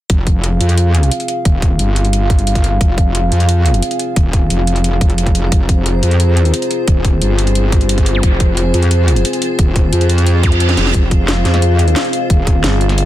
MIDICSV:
0, 0, Header, 1, 8, 480
1, 0, Start_track
1, 0, Key_signature, -4, "minor"
1, 0, Tempo, 338983
1, 137, Time_signature, 4, 2, 24, 8
1, 18482, End_track
2, 0, Start_track
2, 0, Title_t, "Ambient pad"
2, 0, Program_c, 0, 92
2, 137, Note_on_c, 0, 65, 94
2, 293, Note_on_c, 0, 68, 78
2, 1277, Note_on_c, 0, 72, 90
2, 1622, Note_on_c, 0, 80, 87
2, 5456, Note_on_c, 0, 82, 86
2, 5484, Note_off_c, 0, 80, 0
2, 9296, Note_on_c, 0, 80, 86
2, 9321, Note_off_c, 0, 82, 0
2, 13138, Note_on_c, 0, 75, 87
2, 13161, Note_off_c, 0, 80, 0
2, 16979, Note_on_c, 0, 80, 86
2, 17002, Note_off_c, 0, 75, 0
2, 18482, Note_off_c, 0, 65, 0
2, 18482, Note_off_c, 0, 68, 0
2, 18482, Note_off_c, 0, 72, 0
2, 18482, Note_off_c, 0, 80, 0
2, 18482, End_track
3, 0, Start_track
3, 0, Title_t, "Analog synth pad"
3, 0, Program_c, 1, 89
3, 137, Note_on_c, 1, 77, 86
3, 138, Note_on_c, 1, 60, 75
3, 138, Note_on_c, 1, 65, 68
3, 138, Note_on_c, 1, 68, 69
3, 7785, Note_off_c, 1, 77, 0
3, 7818, Note_on_c, 1, 72, 84
3, 15465, Note_off_c, 1, 72, 0
3, 15497, Note_on_c, 1, 77, 85
3, 18482, Note_off_c, 1, 60, 0
3, 18482, Note_off_c, 1, 65, 0
3, 18482, Note_off_c, 1, 68, 0
3, 18482, Note_off_c, 1, 77, 0
3, 18482, End_track
4, 0, Start_track
4, 0, Title_t, "FM bass"
4, 0, Program_c, 2, 39
4, 17897, Note_on_c, 2, 31, 97
4, 18482, Note_off_c, 2, 31, 0
4, 18482, End_track
5, 0, Start_track
5, 0, Title_t, "Wobble bass"
5, 0, Program_c, 3, 39
5, 137, Note_on_c, 3, 29, 97
5, 838, Note_off_c, 3, 29, 0
5, 858, Note_on_c, 3, 41, 94
5, 1559, Note_off_c, 3, 41, 0
5, 2058, Note_on_c, 3, 27, 98
5, 2519, Note_off_c, 3, 27, 0
5, 2536, Note_on_c, 3, 31, 94
5, 3958, Note_off_c, 3, 31, 0
5, 3977, Note_on_c, 3, 29, 97
5, 4678, Note_off_c, 3, 29, 0
5, 4695, Note_on_c, 3, 41, 95
5, 5397, Note_off_c, 3, 41, 0
5, 5896, Note_on_c, 3, 27, 98
5, 6358, Note_off_c, 3, 27, 0
5, 6377, Note_on_c, 3, 29, 92
5, 7078, Note_off_c, 3, 29, 0
5, 7096, Note_on_c, 3, 29, 94
5, 7798, Note_off_c, 3, 29, 0
5, 7816, Note_on_c, 3, 29, 99
5, 8517, Note_off_c, 3, 29, 0
5, 8538, Note_on_c, 3, 41, 96
5, 9239, Note_off_c, 3, 41, 0
5, 9737, Note_on_c, 3, 27, 97
5, 10198, Note_off_c, 3, 27, 0
5, 10218, Note_on_c, 3, 31, 94
5, 11639, Note_off_c, 3, 31, 0
5, 11658, Note_on_c, 3, 29, 97
5, 12358, Note_off_c, 3, 29, 0
5, 12377, Note_on_c, 3, 41, 96
5, 13078, Note_off_c, 3, 41, 0
5, 13576, Note_on_c, 3, 27, 98
5, 14038, Note_off_c, 3, 27, 0
5, 14056, Note_on_c, 3, 41, 96
5, 15237, Note_off_c, 3, 41, 0
5, 15257, Note_on_c, 3, 29, 95
5, 15478, Note_off_c, 3, 29, 0
5, 15496, Note_on_c, 3, 29, 97
5, 16198, Note_off_c, 3, 29, 0
5, 16218, Note_on_c, 3, 41, 97
5, 16919, Note_off_c, 3, 41, 0
5, 17417, Note_on_c, 3, 27, 100
5, 17878, Note_off_c, 3, 27, 0
5, 18482, End_track
6, 0, Start_track
6, 0, Title_t, "Reverse cymbal"
6, 0, Program_c, 4, 119
6, 14536, Note_on_c, 4, 60, 60
6, 15497, Note_off_c, 4, 60, 0
6, 18482, End_track
7, 0, Start_track
7, 0, Title_t, "Zap"
7, 0, Program_c, 5, 103
7, 11536, Note_on_c, 5, 60, 59
7, 11657, Note_off_c, 5, 60, 0
7, 14776, Note_on_c, 5, 60, 62
7, 14897, Note_off_c, 5, 60, 0
7, 18482, End_track
8, 0, Start_track
8, 0, Title_t, "Drums"
8, 137, Note_on_c, 9, 42, 91
8, 138, Note_on_c, 9, 36, 110
8, 279, Note_off_c, 9, 36, 0
8, 279, Note_off_c, 9, 42, 0
8, 378, Note_on_c, 9, 36, 100
8, 378, Note_on_c, 9, 42, 69
8, 519, Note_off_c, 9, 42, 0
8, 520, Note_off_c, 9, 36, 0
8, 617, Note_on_c, 9, 42, 94
8, 759, Note_off_c, 9, 42, 0
8, 858, Note_on_c, 9, 42, 66
8, 978, Note_off_c, 9, 42, 0
8, 978, Note_on_c, 9, 42, 37
8, 1098, Note_off_c, 9, 42, 0
8, 1098, Note_on_c, 9, 42, 92
8, 1239, Note_off_c, 9, 42, 0
8, 1339, Note_on_c, 9, 42, 68
8, 1459, Note_off_c, 9, 42, 0
8, 1459, Note_on_c, 9, 42, 37
8, 1579, Note_off_c, 9, 42, 0
8, 1579, Note_on_c, 9, 42, 90
8, 1698, Note_off_c, 9, 42, 0
8, 1698, Note_on_c, 9, 42, 38
8, 1817, Note_off_c, 9, 42, 0
8, 1817, Note_on_c, 9, 42, 65
8, 1959, Note_off_c, 9, 42, 0
8, 2057, Note_on_c, 9, 42, 89
8, 2058, Note_on_c, 9, 36, 117
8, 2199, Note_off_c, 9, 36, 0
8, 2199, Note_off_c, 9, 42, 0
8, 2298, Note_on_c, 9, 36, 103
8, 2299, Note_on_c, 9, 42, 65
8, 2439, Note_off_c, 9, 36, 0
8, 2440, Note_off_c, 9, 42, 0
8, 2537, Note_on_c, 9, 42, 88
8, 2679, Note_off_c, 9, 42, 0
8, 2777, Note_on_c, 9, 42, 65
8, 2897, Note_off_c, 9, 42, 0
8, 2897, Note_on_c, 9, 42, 37
8, 3018, Note_off_c, 9, 42, 0
8, 3018, Note_on_c, 9, 42, 91
8, 3159, Note_off_c, 9, 42, 0
8, 3257, Note_on_c, 9, 36, 108
8, 3257, Note_on_c, 9, 42, 66
8, 3378, Note_off_c, 9, 42, 0
8, 3378, Note_on_c, 9, 42, 37
8, 3399, Note_off_c, 9, 36, 0
8, 3497, Note_off_c, 9, 42, 0
8, 3497, Note_on_c, 9, 42, 90
8, 3617, Note_off_c, 9, 42, 0
8, 3617, Note_on_c, 9, 36, 65
8, 3617, Note_on_c, 9, 42, 36
8, 3738, Note_off_c, 9, 42, 0
8, 3738, Note_on_c, 9, 42, 64
8, 3758, Note_off_c, 9, 36, 0
8, 3879, Note_off_c, 9, 42, 0
8, 3976, Note_on_c, 9, 36, 121
8, 3977, Note_on_c, 9, 42, 89
8, 4118, Note_off_c, 9, 36, 0
8, 4119, Note_off_c, 9, 42, 0
8, 4216, Note_on_c, 9, 36, 107
8, 4218, Note_on_c, 9, 42, 64
8, 4358, Note_off_c, 9, 36, 0
8, 4360, Note_off_c, 9, 42, 0
8, 4458, Note_on_c, 9, 42, 88
8, 4599, Note_off_c, 9, 42, 0
8, 4697, Note_on_c, 9, 42, 62
8, 4817, Note_off_c, 9, 42, 0
8, 4817, Note_on_c, 9, 42, 35
8, 4937, Note_off_c, 9, 42, 0
8, 4937, Note_on_c, 9, 42, 88
8, 5079, Note_off_c, 9, 42, 0
8, 5177, Note_on_c, 9, 42, 62
8, 5297, Note_off_c, 9, 42, 0
8, 5297, Note_on_c, 9, 42, 35
8, 5416, Note_off_c, 9, 42, 0
8, 5416, Note_on_c, 9, 42, 88
8, 5536, Note_off_c, 9, 42, 0
8, 5536, Note_on_c, 9, 42, 35
8, 5656, Note_off_c, 9, 42, 0
8, 5656, Note_on_c, 9, 42, 60
8, 5798, Note_off_c, 9, 42, 0
8, 5896, Note_on_c, 9, 36, 117
8, 5896, Note_on_c, 9, 42, 85
8, 6037, Note_off_c, 9, 42, 0
8, 6038, Note_off_c, 9, 36, 0
8, 6136, Note_on_c, 9, 36, 105
8, 6136, Note_on_c, 9, 42, 62
8, 6278, Note_off_c, 9, 36, 0
8, 6278, Note_off_c, 9, 42, 0
8, 6376, Note_on_c, 9, 42, 84
8, 6518, Note_off_c, 9, 42, 0
8, 6617, Note_on_c, 9, 42, 60
8, 6738, Note_off_c, 9, 42, 0
8, 6738, Note_on_c, 9, 42, 34
8, 6857, Note_off_c, 9, 42, 0
8, 6857, Note_on_c, 9, 42, 88
8, 6999, Note_off_c, 9, 42, 0
8, 7096, Note_on_c, 9, 36, 108
8, 7097, Note_on_c, 9, 42, 61
8, 7216, Note_off_c, 9, 42, 0
8, 7216, Note_on_c, 9, 42, 33
8, 7238, Note_off_c, 9, 36, 0
8, 7336, Note_off_c, 9, 42, 0
8, 7336, Note_on_c, 9, 42, 86
8, 7456, Note_off_c, 9, 42, 0
8, 7456, Note_on_c, 9, 36, 65
8, 7456, Note_on_c, 9, 42, 35
8, 7575, Note_off_c, 9, 42, 0
8, 7575, Note_on_c, 9, 42, 61
8, 7597, Note_off_c, 9, 36, 0
8, 7717, Note_off_c, 9, 42, 0
8, 7815, Note_on_c, 9, 42, 88
8, 7816, Note_on_c, 9, 36, 113
8, 7957, Note_off_c, 9, 36, 0
8, 7957, Note_off_c, 9, 42, 0
8, 8056, Note_on_c, 9, 36, 101
8, 8056, Note_on_c, 9, 42, 63
8, 8198, Note_off_c, 9, 36, 0
8, 8198, Note_off_c, 9, 42, 0
8, 8295, Note_on_c, 9, 42, 83
8, 8437, Note_off_c, 9, 42, 0
8, 8536, Note_on_c, 9, 42, 62
8, 8656, Note_off_c, 9, 42, 0
8, 8656, Note_on_c, 9, 42, 35
8, 8776, Note_off_c, 9, 42, 0
8, 8776, Note_on_c, 9, 42, 86
8, 8918, Note_off_c, 9, 42, 0
8, 9016, Note_on_c, 9, 42, 62
8, 9136, Note_off_c, 9, 42, 0
8, 9136, Note_on_c, 9, 42, 34
8, 9256, Note_off_c, 9, 42, 0
8, 9256, Note_on_c, 9, 42, 88
8, 9377, Note_off_c, 9, 42, 0
8, 9377, Note_on_c, 9, 42, 35
8, 9496, Note_off_c, 9, 42, 0
8, 9496, Note_on_c, 9, 42, 61
8, 9638, Note_off_c, 9, 42, 0
8, 9736, Note_on_c, 9, 42, 90
8, 9737, Note_on_c, 9, 36, 109
8, 9878, Note_off_c, 9, 36, 0
8, 9878, Note_off_c, 9, 42, 0
8, 9977, Note_on_c, 9, 36, 98
8, 9977, Note_on_c, 9, 42, 64
8, 10118, Note_off_c, 9, 36, 0
8, 10119, Note_off_c, 9, 42, 0
8, 10218, Note_on_c, 9, 42, 88
8, 10359, Note_off_c, 9, 42, 0
8, 10458, Note_on_c, 9, 42, 65
8, 10578, Note_off_c, 9, 42, 0
8, 10578, Note_on_c, 9, 42, 36
8, 10697, Note_off_c, 9, 42, 0
8, 10697, Note_on_c, 9, 42, 90
8, 10838, Note_off_c, 9, 42, 0
8, 10937, Note_on_c, 9, 36, 105
8, 10937, Note_on_c, 9, 42, 64
8, 11057, Note_off_c, 9, 42, 0
8, 11057, Note_on_c, 9, 42, 36
8, 11079, Note_off_c, 9, 36, 0
8, 11175, Note_off_c, 9, 42, 0
8, 11175, Note_on_c, 9, 42, 92
8, 11296, Note_off_c, 9, 42, 0
8, 11296, Note_on_c, 9, 42, 36
8, 11297, Note_on_c, 9, 36, 60
8, 11415, Note_off_c, 9, 42, 0
8, 11415, Note_on_c, 9, 42, 64
8, 11439, Note_off_c, 9, 36, 0
8, 11557, Note_off_c, 9, 42, 0
8, 11655, Note_on_c, 9, 42, 91
8, 11657, Note_on_c, 9, 36, 107
8, 11797, Note_off_c, 9, 42, 0
8, 11799, Note_off_c, 9, 36, 0
8, 11895, Note_on_c, 9, 42, 66
8, 11897, Note_on_c, 9, 36, 96
8, 12037, Note_off_c, 9, 42, 0
8, 12039, Note_off_c, 9, 36, 0
8, 12136, Note_on_c, 9, 42, 91
8, 12278, Note_off_c, 9, 42, 0
8, 12376, Note_on_c, 9, 42, 67
8, 12496, Note_off_c, 9, 42, 0
8, 12496, Note_on_c, 9, 42, 37
8, 12616, Note_off_c, 9, 42, 0
8, 12616, Note_on_c, 9, 42, 93
8, 12758, Note_off_c, 9, 42, 0
8, 12856, Note_on_c, 9, 42, 66
8, 12975, Note_off_c, 9, 42, 0
8, 12975, Note_on_c, 9, 42, 38
8, 13097, Note_off_c, 9, 42, 0
8, 13097, Note_on_c, 9, 42, 93
8, 13216, Note_off_c, 9, 42, 0
8, 13216, Note_on_c, 9, 42, 38
8, 13335, Note_off_c, 9, 42, 0
8, 13335, Note_on_c, 9, 42, 64
8, 13477, Note_off_c, 9, 42, 0
8, 13575, Note_on_c, 9, 42, 95
8, 13576, Note_on_c, 9, 36, 112
8, 13717, Note_off_c, 9, 42, 0
8, 13718, Note_off_c, 9, 36, 0
8, 13816, Note_on_c, 9, 36, 98
8, 13816, Note_on_c, 9, 42, 68
8, 13957, Note_off_c, 9, 42, 0
8, 13958, Note_off_c, 9, 36, 0
8, 14055, Note_on_c, 9, 42, 97
8, 14175, Note_off_c, 9, 42, 0
8, 14175, Note_on_c, 9, 42, 38
8, 14295, Note_off_c, 9, 42, 0
8, 14295, Note_on_c, 9, 42, 68
8, 14416, Note_off_c, 9, 42, 0
8, 14416, Note_on_c, 9, 42, 38
8, 14535, Note_off_c, 9, 42, 0
8, 14535, Note_on_c, 9, 42, 95
8, 14677, Note_off_c, 9, 42, 0
8, 14775, Note_on_c, 9, 42, 70
8, 14776, Note_on_c, 9, 36, 102
8, 14895, Note_off_c, 9, 42, 0
8, 14895, Note_on_c, 9, 42, 39
8, 14918, Note_off_c, 9, 36, 0
8, 15014, Note_off_c, 9, 42, 0
8, 15014, Note_on_c, 9, 42, 95
8, 15136, Note_off_c, 9, 42, 0
8, 15136, Note_on_c, 9, 38, 52
8, 15136, Note_on_c, 9, 42, 38
8, 15255, Note_off_c, 9, 38, 0
8, 15255, Note_off_c, 9, 42, 0
8, 15255, Note_on_c, 9, 38, 76
8, 15255, Note_on_c, 9, 42, 66
8, 15375, Note_off_c, 9, 38, 0
8, 15375, Note_on_c, 9, 38, 78
8, 15396, Note_off_c, 9, 42, 0
8, 15495, Note_on_c, 9, 42, 93
8, 15497, Note_on_c, 9, 36, 114
8, 15516, Note_off_c, 9, 38, 0
8, 15636, Note_off_c, 9, 42, 0
8, 15638, Note_off_c, 9, 36, 0
8, 15736, Note_on_c, 9, 42, 68
8, 15737, Note_on_c, 9, 36, 101
8, 15877, Note_off_c, 9, 42, 0
8, 15878, Note_off_c, 9, 36, 0
8, 15976, Note_on_c, 9, 38, 116
8, 15976, Note_on_c, 9, 42, 95
8, 16096, Note_on_c, 9, 40, 33
8, 16118, Note_off_c, 9, 38, 0
8, 16118, Note_off_c, 9, 42, 0
8, 16215, Note_on_c, 9, 38, 36
8, 16215, Note_on_c, 9, 42, 67
8, 16238, Note_off_c, 9, 40, 0
8, 16337, Note_off_c, 9, 42, 0
8, 16337, Note_on_c, 9, 40, 49
8, 16337, Note_on_c, 9, 42, 38
8, 16357, Note_off_c, 9, 38, 0
8, 16456, Note_off_c, 9, 42, 0
8, 16456, Note_on_c, 9, 42, 98
8, 16478, Note_off_c, 9, 40, 0
8, 16598, Note_off_c, 9, 42, 0
8, 16696, Note_on_c, 9, 42, 68
8, 16817, Note_off_c, 9, 42, 0
8, 16817, Note_on_c, 9, 42, 39
8, 16937, Note_off_c, 9, 42, 0
8, 16937, Note_on_c, 9, 38, 117
8, 16937, Note_on_c, 9, 42, 94
8, 17058, Note_off_c, 9, 42, 0
8, 17058, Note_on_c, 9, 42, 37
8, 17079, Note_off_c, 9, 38, 0
8, 17177, Note_off_c, 9, 42, 0
8, 17177, Note_on_c, 9, 42, 65
8, 17319, Note_off_c, 9, 42, 0
8, 17417, Note_on_c, 9, 36, 116
8, 17418, Note_on_c, 9, 42, 93
8, 17558, Note_off_c, 9, 36, 0
8, 17559, Note_off_c, 9, 42, 0
8, 17657, Note_on_c, 9, 36, 109
8, 17658, Note_on_c, 9, 42, 67
8, 17798, Note_off_c, 9, 36, 0
8, 17799, Note_off_c, 9, 42, 0
8, 17897, Note_on_c, 9, 38, 121
8, 17897, Note_on_c, 9, 42, 89
8, 18038, Note_off_c, 9, 38, 0
8, 18038, Note_off_c, 9, 42, 0
8, 18137, Note_on_c, 9, 42, 66
8, 18257, Note_off_c, 9, 42, 0
8, 18257, Note_on_c, 9, 40, 51
8, 18257, Note_on_c, 9, 42, 36
8, 18377, Note_off_c, 9, 42, 0
8, 18377, Note_on_c, 9, 42, 94
8, 18399, Note_off_c, 9, 40, 0
8, 18482, Note_off_c, 9, 42, 0
8, 18482, End_track
0, 0, End_of_file